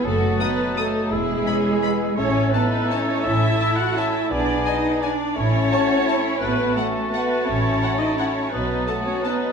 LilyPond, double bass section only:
\new Staff \with { instrumentName = "Double bass section" } { \clef bass \time 3/4 \key a \lydian \tempo 4 = 169 fis,,4 r2 | e,,4 r2 | a,,4 r2 | a,,4 r2 |
b,,4 r2 | a,,4 r2 | a,,4 r2 | a,,4 r2 |
b,,4 r2 | }